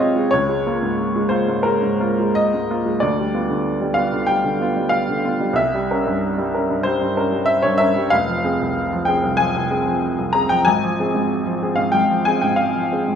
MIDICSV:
0, 0, Header, 1, 2, 480
1, 0, Start_track
1, 0, Tempo, 671892
1, 219, Time_signature, 4, 2, 24, 8
1, 2139, Tempo, 638298
1, 8859, Tempo, 657174
1, 9753, End_track
2, 0, Start_track
2, 0, Title_t, "Upright piano"
2, 0, Program_c, 0, 0
2, 0, Control_c, 0, 64, 127
2, 0, Note_on_c, 0, 48, 43
2, 0, Note_on_c, 0, 56, 43
2, 0, Note_on_c, 0, 60, 44
2, 0, Note_on_c, 0, 65, 48
2, 0, Note_on_c, 0, 73, 72
2, 0, Note_on_c, 0, 75, 80
2, 0, Note_on_c, 0, 77, 79
2, 0, Note_on_c, 0, 79, 93
2, 97, Note_off_c, 0, 60, 0
2, 99, Note_off_c, 0, 65, 0
2, 113, Note_off_c, 0, 56, 0
2, 113, Note_on_c, 0, 56, 46
2, 220, Note_off_c, 0, 73, 0
2, 220, Note_on_c, 0, 73, 90
2, 222, Note_off_c, 0, 75, 0
2, 226, Note_off_c, 0, 56, 0
2, 230, Control_c, 0, 64, 0
2, 234, Note_off_c, 0, 77, 0
2, 234, Note_off_c, 0, 79, 0
2, 236, Note_off_c, 0, 48, 0
2, 238, Note_on_c, 0, 37, 61
2, 330, Control_c, 0, 64, 127
2, 351, Note_on_c, 0, 56, 42
2, 475, Note_on_c, 0, 58, 43
2, 480, Note_on_c, 0, 65, 47
2, 536, Note_off_c, 0, 56, 0
2, 575, Note_off_c, 0, 58, 0
2, 577, Note_off_c, 0, 65, 0
2, 590, Note_on_c, 0, 44, 44
2, 827, Note_on_c, 0, 56, 46
2, 921, Note_on_c, 0, 72, 78
2, 931, Note_off_c, 0, 73, 0
2, 932, Note_on_c, 0, 58, 44
2, 939, Note_on_c, 0, 65, 46
2, 961, Note_off_c, 0, 44, 0
2, 1009, Note_off_c, 0, 56, 0
2, 1038, Note_off_c, 0, 58, 0
2, 1042, Note_off_c, 0, 65, 0
2, 1059, Note_on_c, 0, 44, 42
2, 1151, Note_off_c, 0, 37, 0
2, 1164, Note_on_c, 0, 70, 77
2, 1165, Note_off_c, 0, 72, 0
2, 1181, Note_on_c, 0, 56, 44
2, 1248, Note_off_c, 0, 44, 0
2, 1300, Note_on_c, 0, 44, 39
2, 1375, Note_off_c, 0, 56, 0
2, 1431, Note_on_c, 0, 58, 45
2, 1433, Note_on_c, 0, 65, 48
2, 1501, Note_off_c, 0, 44, 0
2, 1542, Note_off_c, 0, 58, 0
2, 1543, Note_off_c, 0, 65, 0
2, 1570, Note_on_c, 0, 56, 45
2, 1670, Note_off_c, 0, 70, 0
2, 1680, Note_on_c, 0, 75, 93
2, 1816, Note_on_c, 0, 44, 40
2, 1932, Note_on_c, 0, 58, 41
2, 1934, Note_on_c, 0, 65, 48
2, 1945, Note_off_c, 0, 56, 0
2, 1991, Note_off_c, 0, 44, 0
2, 2027, Note_off_c, 0, 58, 0
2, 2028, Note_off_c, 0, 65, 0
2, 2042, Note_on_c, 0, 56, 42
2, 2144, Note_off_c, 0, 75, 0
2, 2145, Note_on_c, 0, 74, 78
2, 2149, Note_off_c, 0, 56, 0
2, 2154, Control_c, 0, 64, 0
2, 2160, Note_on_c, 0, 38, 62
2, 2285, Note_on_c, 0, 55, 42
2, 2294, Control_c, 0, 64, 127
2, 2400, Note_on_c, 0, 59, 43
2, 2404, Note_on_c, 0, 65, 46
2, 2463, Note_off_c, 0, 55, 0
2, 2498, Note_off_c, 0, 59, 0
2, 2500, Note_off_c, 0, 65, 0
2, 2516, Note_on_c, 0, 50, 45
2, 2752, Note_on_c, 0, 55, 46
2, 2851, Note_on_c, 0, 77, 82
2, 2859, Note_off_c, 0, 74, 0
2, 2869, Note_on_c, 0, 59, 43
2, 2871, Note_on_c, 0, 65, 46
2, 2890, Note_off_c, 0, 50, 0
2, 2936, Note_off_c, 0, 55, 0
2, 2971, Note_off_c, 0, 59, 0
2, 2972, Note_off_c, 0, 65, 0
2, 2991, Note_on_c, 0, 50, 43
2, 3077, Note_off_c, 0, 38, 0
2, 3092, Note_off_c, 0, 77, 0
2, 3095, Note_on_c, 0, 79, 83
2, 3110, Note_on_c, 0, 55, 43
2, 3175, Note_off_c, 0, 50, 0
2, 3229, Note_on_c, 0, 50, 44
2, 3295, Note_off_c, 0, 55, 0
2, 3354, Note_on_c, 0, 59, 45
2, 3359, Note_on_c, 0, 65, 48
2, 3416, Note_off_c, 0, 50, 0
2, 3456, Note_off_c, 0, 59, 0
2, 3459, Note_off_c, 0, 65, 0
2, 3473, Note_on_c, 0, 55, 43
2, 3568, Note_on_c, 0, 77, 90
2, 3580, Note_off_c, 0, 79, 0
2, 3715, Note_on_c, 0, 50, 48
2, 3834, Note_on_c, 0, 59, 44
2, 3836, Note_on_c, 0, 65, 49
2, 3856, Note_off_c, 0, 55, 0
2, 3904, Note_off_c, 0, 50, 0
2, 3939, Note_off_c, 0, 59, 0
2, 3940, Note_off_c, 0, 65, 0
2, 3950, Note_on_c, 0, 55, 45
2, 4049, Note_on_c, 0, 36, 63
2, 4061, Note_off_c, 0, 77, 0
2, 4067, Note_on_c, 0, 76, 90
2, 4069, Note_off_c, 0, 55, 0
2, 4080, Control_c, 0, 64, 0
2, 4201, Control_c, 0, 64, 127
2, 4207, Note_on_c, 0, 55, 46
2, 4332, Note_on_c, 0, 61, 47
2, 4332, Note_on_c, 0, 70, 51
2, 4390, Note_off_c, 0, 55, 0
2, 4430, Note_off_c, 0, 61, 0
2, 4430, Note_off_c, 0, 70, 0
2, 4450, Note_on_c, 0, 43, 44
2, 4685, Note_on_c, 0, 55, 49
2, 4803, Note_on_c, 0, 61, 42
2, 4809, Note_on_c, 0, 70, 51
2, 4828, Note_off_c, 0, 43, 0
2, 4872, Note_off_c, 0, 55, 0
2, 4907, Note_off_c, 0, 61, 0
2, 4910, Note_off_c, 0, 70, 0
2, 4924, Note_on_c, 0, 43, 44
2, 4995, Note_off_c, 0, 36, 0
2, 5027, Note_on_c, 0, 72, 87
2, 5034, Note_off_c, 0, 76, 0
2, 5044, Note_on_c, 0, 55, 50
2, 5110, Note_off_c, 0, 43, 0
2, 5163, Note_on_c, 0, 43, 45
2, 5230, Note_off_c, 0, 55, 0
2, 5276, Note_on_c, 0, 61, 47
2, 5281, Note_on_c, 0, 70, 55
2, 5349, Note_off_c, 0, 43, 0
2, 5382, Note_off_c, 0, 61, 0
2, 5385, Note_off_c, 0, 70, 0
2, 5394, Note_on_c, 0, 55, 47
2, 5494, Note_on_c, 0, 76, 97
2, 5508, Note_off_c, 0, 72, 0
2, 5621, Note_on_c, 0, 73, 81
2, 5623, Note_off_c, 0, 76, 0
2, 5637, Note_on_c, 0, 43, 47
2, 5735, Note_on_c, 0, 76, 94
2, 5747, Note_off_c, 0, 73, 0
2, 5748, Note_on_c, 0, 61, 48
2, 5752, Note_on_c, 0, 70, 55
2, 5777, Note_off_c, 0, 55, 0
2, 5827, Note_off_c, 0, 43, 0
2, 5858, Note_off_c, 0, 61, 0
2, 5860, Note_off_c, 0, 70, 0
2, 5868, Note_on_c, 0, 55, 50
2, 5982, Note_on_c, 0, 77, 99
2, 5984, Note_off_c, 0, 76, 0
2, 5991, Note_off_c, 0, 55, 0
2, 5997, Note_on_c, 0, 29, 64
2, 6006, Control_c, 0, 64, 0
2, 6119, Control_c, 0, 64, 127
2, 6120, Note_on_c, 0, 53, 49
2, 6237, Note_on_c, 0, 60, 45
2, 6238, Note_on_c, 0, 68, 48
2, 6308, Note_off_c, 0, 53, 0
2, 6343, Note_off_c, 0, 60, 0
2, 6343, Note_off_c, 0, 68, 0
2, 6360, Note_on_c, 0, 36, 44
2, 6600, Note_on_c, 0, 53, 56
2, 6695, Note_on_c, 0, 79, 84
2, 6701, Note_off_c, 0, 77, 0
2, 6714, Note_on_c, 0, 60, 47
2, 6719, Note_on_c, 0, 68, 49
2, 6734, Note_off_c, 0, 36, 0
2, 6783, Note_off_c, 0, 53, 0
2, 6816, Note_off_c, 0, 60, 0
2, 6819, Note_off_c, 0, 68, 0
2, 6831, Note_on_c, 0, 36, 50
2, 6916, Note_off_c, 0, 29, 0
2, 6933, Note_on_c, 0, 80, 97
2, 6937, Note_off_c, 0, 79, 0
2, 6947, Note_on_c, 0, 53, 52
2, 7017, Note_off_c, 0, 36, 0
2, 7068, Note_on_c, 0, 36, 50
2, 7135, Note_off_c, 0, 53, 0
2, 7184, Note_on_c, 0, 60, 49
2, 7188, Note_on_c, 0, 68, 50
2, 7257, Note_off_c, 0, 36, 0
2, 7291, Note_off_c, 0, 60, 0
2, 7293, Note_off_c, 0, 68, 0
2, 7307, Note_on_c, 0, 53, 46
2, 7549, Note_on_c, 0, 36, 43
2, 7653, Note_on_c, 0, 82, 89
2, 7656, Note_off_c, 0, 80, 0
2, 7668, Note_on_c, 0, 68, 53
2, 7669, Note_on_c, 0, 60, 42
2, 7688, Note_off_c, 0, 53, 0
2, 7737, Note_off_c, 0, 36, 0
2, 7773, Note_off_c, 0, 60, 0
2, 7773, Note_off_c, 0, 68, 0
2, 7777, Note_off_c, 0, 82, 0
2, 7778, Note_on_c, 0, 79, 96
2, 7789, Note_on_c, 0, 53, 49
2, 7894, Note_on_c, 0, 80, 97
2, 7900, Note_off_c, 0, 79, 0
2, 7906, Note_off_c, 0, 53, 0
2, 7909, Note_on_c, 0, 32, 63
2, 7915, Control_c, 0, 64, 0
2, 8034, Control_c, 0, 64, 127
2, 8037, Note_on_c, 0, 53, 50
2, 8156, Note_on_c, 0, 60, 44
2, 8160, Note_on_c, 0, 68, 48
2, 8220, Note_off_c, 0, 53, 0
2, 8256, Note_off_c, 0, 60, 0
2, 8258, Note_off_c, 0, 68, 0
2, 8267, Note_on_c, 0, 44, 47
2, 8510, Note_on_c, 0, 53, 53
2, 8631, Note_on_c, 0, 68, 47
2, 8633, Note_on_c, 0, 60, 46
2, 8644, Note_off_c, 0, 44, 0
2, 8695, Note_off_c, 0, 53, 0
2, 8728, Note_on_c, 0, 77, 76
2, 8733, Note_off_c, 0, 68, 0
2, 8733, Note_off_c, 0, 80, 0
2, 8734, Note_off_c, 0, 60, 0
2, 8742, Note_on_c, 0, 44, 41
2, 8833, Note_off_c, 0, 32, 0
2, 8849, Note_on_c, 0, 79, 86
2, 8853, Note_off_c, 0, 77, 0
2, 8866, Note_on_c, 0, 32, 49
2, 8930, Note_off_c, 0, 44, 0
2, 8986, Note_on_c, 0, 53, 44
2, 9088, Note_off_c, 0, 79, 0
2, 9094, Note_on_c, 0, 80, 88
2, 9109, Note_on_c, 0, 60, 45
2, 9111, Note_on_c, 0, 68, 48
2, 9169, Note_off_c, 0, 53, 0
2, 9209, Note_off_c, 0, 60, 0
2, 9210, Note_off_c, 0, 68, 0
2, 9212, Note_off_c, 0, 80, 0
2, 9213, Note_on_c, 0, 79, 75
2, 9223, Note_on_c, 0, 44, 44
2, 9321, Note_on_c, 0, 77, 74
2, 9332, Note_off_c, 0, 79, 0
2, 9462, Note_on_c, 0, 53, 38
2, 9569, Note_off_c, 0, 77, 0
2, 9580, Note_on_c, 0, 60, 40
2, 9588, Note_on_c, 0, 68, 47
2, 9605, Note_off_c, 0, 44, 0
2, 9653, Note_off_c, 0, 53, 0
2, 9687, Note_off_c, 0, 60, 0
2, 9691, Note_off_c, 0, 68, 0
2, 9695, Note_on_c, 0, 44, 41
2, 9753, Note_off_c, 0, 32, 0
2, 9753, Note_off_c, 0, 44, 0
2, 9753, End_track
0, 0, End_of_file